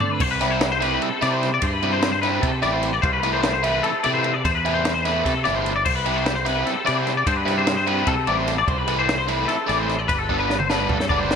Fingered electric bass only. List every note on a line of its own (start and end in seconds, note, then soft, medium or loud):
0.21 0.98 C2 loud
1.23 1.60 C3 medium
1.63 2.39 G2 loud
2.43 2.62 C3 medium
2.64 3.01 A1 loud
3.03 3.80 C2 loud
4.06 4.42 C3 medium
4.45 5.22 E2 loud
5.26 5.44 C3 medium
5.47 5.84 G1 medium
5.86 6.63 C2 loud
6.88 7.25 C3 medium
7.27 8.03 G2 loud
8.07 8.26 C3 medium
8.28 8.65 A1 loud
8.68 9.44 C2 loud
9.69 10.06 A1 medium
10.09 10.86 G1 loud
10.90 11.09 G2 medium
11.10 11.36 F#1 loud